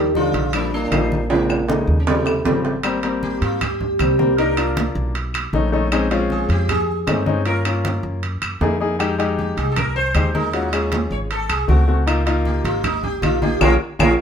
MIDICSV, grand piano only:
0, 0, Header, 1, 2, 480
1, 0, Start_track
1, 0, Key_signature, -4, "major"
1, 0, Tempo, 384615
1, 1631, Time_signature, 4, 2, 24, 8
1, 17737, End_track
2, 0, Start_track
2, 0, Title_t, "Grand piano"
2, 0, Program_c, 0, 0
2, 179, Note_on_c, 0, 53, 67
2, 185, Note_on_c, 0, 55, 57
2, 192, Note_on_c, 0, 63, 76
2, 521, Note_off_c, 0, 53, 0
2, 525, Note_off_c, 0, 55, 0
2, 528, Note_off_c, 0, 63, 0
2, 660, Note_on_c, 0, 53, 66
2, 671, Note_on_c, 0, 55, 59
2, 675, Note_on_c, 0, 62, 75
2, 1002, Note_off_c, 0, 53, 0
2, 1007, Note_off_c, 0, 55, 0
2, 1010, Note_off_c, 0, 62, 0
2, 1142, Note_on_c, 0, 53, 82
2, 1149, Note_on_c, 0, 55, 65
2, 1154, Note_on_c, 0, 63, 84
2, 1482, Note_off_c, 0, 53, 0
2, 1486, Note_off_c, 0, 55, 0
2, 1488, Note_off_c, 0, 63, 0
2, 1618, Note_on_c, 0, 49, 66
2, 1624, Note_on_c, 0, 56, 67
2, 1634, Note_on_c, 0, 60, 82
2, 1960, Note_off_c, 0, 49, 0
2, 1964, Note_off_c, 0, 56, 0
2, 1968, Note_off_c, 0, 60, 0
2, 2100, Note_on_c, 0, 49, 66
2, 2109, Note_on_c, 0, 56, 62
2, 2114, Note_on_c, 0, 63, 79
2, 2441, Note_off_c, 0, 49, 0
2, 2446, Note_off_c, 0, 56, 0
2, 2449, Note_off_c, 0, 63, 0
2, 2585, Note_on_c, 0, 49, 68
2, 2588, Note_on_c, 0, 53, 56
2, 2595, Note_on_c, 0, 55, 56
2, 2597, Note_on_c, 0, 60, 70
2, 2924, Note_off_c, 0, 49, 0
2, 2925, Note_off_c, 0, 53, 0
2, 2929, Note_off_c, 0, 55, 0
2, 2930, Note_off_c, 0, 60, 0
2, 3054, Note_on_c, 0, 49, 66
2, 3059, Note_on_c, 0, 53, 69
2, 3063, Note_on_c, 0, 55, 71
2, 3071, Note_on_c, 0, 60, 87
2, 3398, Note_off_c, 0, 49, 0
2, 3401, Note_off_c, 0, 53, 0
2, 3403, Note_off_c, 0, 55, 0
2, 3407, Note_off_c, 0, 60, 0
2, 3538, Note_on_c, 0, 55, 93
2, 3547, Note_on_c, 0, 58, 75
2, 3552, Note_on_c, 0, 60, 99
2, 3712, Note_off_c, 0, 55, 0
2, 3717, Note_off_c, 0, 58, 0
2, 3719, Note_off_c, 0, 60, 0
2, 3782, Note_on_c, 0, 55, 83
2, 3784, Note_on_c, 0, 58, 80
2, 3793, Note_on_c, 0, 60, 92
2, 4458, Note_off_c, 0, 55, 0
2, 4459, Note_off_c, 0, 58, 0
2, 4463, Note_off_c, 0, 60, 0
2, 4983, Note_on_c, 0, 55, 69
2, 4989, Note_on_c, 0, 58, 59
2, 4995, Note_on_c, 0, 60, 78
2, 5154, Note_off_c, 0, 55, 0
2, 5157, Note_off_c, 0, 58, 0
2, 5160, Note_off_c, 0, 60, 0
2, 5221, Note_on_c, 0, 55, 79
2, 5223, Note_on_c, 0, 58, 74
2, 5229, Note_on_c, 0, 60, 96
2, 5393, Note_off_c, 0, 55, 0
2, 5394, Note_off_c, 0, 58, 0
2, 5397, Note_off_c, 0, 60, 0
2, 5463, Note_on_c, 0, 58, 78
2, 5470, Note_on_c, 0, 62, 67
2, 5478, Note_on_c, 0, 63, 90
2, 5634, Note_off_c, 0, 58, 0
2, 5638, Note_off_c, 0, 62, 0
2, 5642, Note_off_c, 0, 63, 0
2, 5707, Note_on_c, 0, 58, 73
2, 5715, Note_on_c, 0, 62, 70
2, 5720, Note_on_c, 0, 65, 79
2, 6380, Note_off_c, 0, 58, 0
2, 6384, Note_off_c, 0, 62, 0
2, 6387, Note_off_c, 0, 65, 0
2, 6909, Note_on_c, 0, 57, 77
2, 6915, Note_on_c, 0, 61, 70
2, 6922, Note_on_c, 0, 63, 97
2, 7077, Note_off_c, 0, 57, 0
2, 7080, Note_off_c, 0, 61, 0
2, 7084, Note_off_c, 0, 63, 0
2, 7141, Note_on_c, 0, 57, 82
2, 7148, Note_on_c, 0, 61, 78
2, 7157, Note_on_c, 0, 63, 96
2, 7314, Note_off_c, 0, 57, 0
2, 7317, Note_off_c, 0, 61, 0
2, 7321, Note_off_c, 0, 63, 0
2, 7387, Note_on_c, 0, 56, 95
2, 7389, Note_on_c, 0, 60, 86
2, 7393, Note_on_c, 0, 61, 83
2, 7397, Note_on_c, 0, 63, 99
2, 7557, Note_off_c, 0, 56, 0
2, 7557, Note_off_c, 0, 60, 0
2, 7559, Note_off_c, 0, 61, 0
2, 7562, Note_off_c, 0, 63, 0
2, 7623, Note_on_c, 0, 56, 96
2, 7625, Note_on_c, 0, 60, 83
2, 7628, Note_on_c, 0, 61, 85
2, 7633, Note_on_c, 0, 65, 103
2, 8299, Note_off_c, 0, 56, 0
2, 8299, Note_off_c, 0, 60, 0
2, 8301, Note_off_c, 0, 61, 0
2, 8304, Note_off_c, 0, 65, 0
2, 8820, Note_on_c, 0, 56, 72
2, 8825, Note_on_c, 0, 60, 67
2, 8829, Note_on_c, 0, 61, 64
2, 8834, Note_on_c, 0, 63, 73
2, 8993, Note_off_c, 0, 56, 0
2, 8996, Note_off_c, 0, 60, 0
2, 8998, Note_off_c, 0, 61, 0
2, 9000, Note_off_c, 0, 63, 0
2, 9058, Note_on_c, 0, 56, 80
2, 9063, Note_on_c, 0, 60, 80
2, 9068, Note_on_c, 0, 61, 83
2, 9069, Note_on_c, 0, 63, 91
2, 9232, Note_off_c, 0, 56, 0
2, 9234, Note_off_c, 0, 60, 0
2, 9237, Note_off_c, 0, 61, 0
2, 9237, Note_off_c, 0, 63, 0
2, 9304, Note_on_c, 0, 58, 74
2, 9310, Note_on_c, 0, 61, 70
2, 9314, Note_on_c, 0, 65, 86
2, 9475, Note_off_c, 0, 58, 0
2, 9478, Note_off_c, 0, 61, 0
2, 9480, Note_off_c, 0, 65, 0
2, 9550, Note_on_c, 0, 58, 67
2, 9554, Note_on_c, 0, 61, 71
2, 9565, Note_on_c, 0, 65, 81
2, 10222, Note_off_c, 0, 58, 0
2, 10224, Note_off_c, 0, 61, 0
2, 10229, Note_off_c, 0, 65, 0
2, 10749, Note_on_c, 0, 58, 80
2, 10756, Note_on_c, 0, 63, 71
2, 10759, Note_on_c, 0, 64, 74
2, 10762, Note_on_c, 0, 68, 91
2, 10918, Note_off_c, 0, 58, 0
2, 10921, Note_off_c, 0, 63, 0
2, 10923, Note_off_c, 0, 64, 0
2, 10924, Note_off_c, 0, 68, 0
2, 10986, Note_on_c, 0, 63, 73
2, 10987, Note_on_c, 0, 58, 79
2, 10997, Note_on_c, 0, 64, 70
2, 10999, Note_on_c, 0, 68, 88
2, 11156, Note_off_c, 0, 58, 0
2, 11156, Note_off_c, 0, 63, 0
2, 11161, Note_off_c, 0, 64, 0
2, 11163, Note_off_c, 0, 68, 0
2, 11220, Note_on_c, 0, 56, 90
2, 11224, Note_on_c, 0, 63, 84
2, 11230, Note_on_c, 0, 67, 102
2, 11393, Note_off_c, 0, 56, 0
2, 11395, Note_off_c, 0, 63, 0
2, 11398, Note_off_c, 0, 67, 0
2, 11461, Note_on_c, 0, 56, 94
2, 11468, Note_on_c, 0, 63, 82
2, 11477, Note_on_c, 0, 67, 99
2, 12137, Note_off_c, 0, 56, 0
2, 12141, Note_off_c, 0, 63, 0
2, 12145, Note_off_c, 0, 67, 0
2, 12666, Note_on_c, 0, 56, 71
2, 12673, Note_on_c, 0, 63, 65
2, 12680, Note_on_c, 0, 67, 82
2, 12836, Note_off_c, 0, 56, 0
2, 12839, Note_off_c, 0, 63, 0
2, 12843, Note_off_c, 0, 67, 0
2, 12904, Note_on_c, 0, 56, 70
2, 12904, Note_on_c, 0, 63, 64
2, 12915, Note_on_c, 0, 70, 76
2, 13075, Note_off_c, 0, 56, 0
2, 13075, Note_off_c, 0, 63, 0
2, 13080, Note_off_c, 0, 70, 0
2, 13141, Note_on_c, 0, 56, 71
2, 13150, Note_on_c, 0, 61, 75
2, 13151, Note_on_c, 0, 65, 66
2, 13158, Note_on_c, 0, 66, 83
2, 13313, Note_off_c, 0, 56, 0
2, 13318, Note_off_c, 0, 61, 0
2, 13318, Note_off_c, 0, 65, 0
2, 13322, Note_off_c, 0, 66, 0
2, 13382, Note_on_c, 0, 56, 70
2, 13388, Note_on_c, 0, 61, 69
2, 13390, Note_on_c, 0, 65, 65
2, 13395, Note_on_c, 0, 68, 82
2, 14057, Note_off_c, 0, 56, 0
2, 14060, Note_off_c, 0, 61, 0
2, 14062, Note_off_c, 0, 65, 0
2, 14064, Note_off_c, 0, 68, 0
2, 14575, Note_on_c, 0, 57, 72
2, 14586, Note_on_c, 0, 60, 65
2, 14589, Note_on_c, 0, 66, 77
2, 14750, Note_off_c, 0, 57, 0
2, 14755, Note_off_c, 0, 60, 0
2, 14757, Note_off_c, 0, 66, 0
2, 14823, Note_on_c, 0, 57, 73
2, 14826, Note_on_c, 0, 60, 66
2, 14832, Note_on_c, 0, 66, 78
2, 14994, Note_off_c, 0, 57, 0
2, 14995, Note_off_c, 0, 60, 0
2, 14998, Note_off_c, 0, 66, 0
2, 15057, Note_on_c, 0, 58, 93
2, 15061, Note_on_c, 0, 63, 89
2, 15070, Note_on_c, 0, 65, 96
2, 15231, Note_off_c, 0, 58, 0
2, 15233, Note_off_c, 0, 63, 0
2, 15238, Note_off_c, 0, 65, 0
2, 15300, Note_on_c, 0, 58, 88
2, 15304, Note_on_c, 0, 63, 87
2, 15315, Note_on_c, 0, 65, 101
2, 15977, Note_off_c, 0, 58, 0
2, 15979, Note_off_c, 0, 63, 0
2, 15984, Note_off_c, 0, 65, 0
2, 16502, Note_on_c, 0, 58, 74
2, 16513, Note_on_c, 0, 63, 62
2, 16515, Note_on_c, 0, 65, 77
2, 16674, Note_off_c, 0, 58, 0
2, 16679, Note_off_c, 0, 63, 0
2, 16681, Note_off_c, 0, 65, 0
2, 16741, Note_on_c, 0, 58, 68
2, 16750, Note_on_c, 0, 63, 68
2, 16752, Note_on_c, 0, 65, 76
2, 16914, Note_off_c, 0, 58, 0
2, 16918, Note_off_c, 0, 63, 0
2, 16919, Note_off_c, 0, 65, 0
2, 16981, Note_on_c, 0, 61, 98
2, 16983, Note_on_c, 0, 65, 97
2, 16986, Note_on_c, 0, 58, 96
2, 17139, Note_off_c, 0, 61, 0
2, 17140, Note_off_c, 0, 65, 0
2, 17141, Note_off_c, 0, 58, 0
2, 17462, Note_on_c, 0, 65, 92
2, 17466, Note_on_c, 0, 61, 89
2, 17469, Note_on_c, 0, 58, 98
2, 17620, Note_off_c, 0, 65, 0
2, 17622, Note_off_c, 0, 61, 0
2, 17624, Note_off_c, 0, 58, 0
2, 17737, End_track
0, 0, End_of_file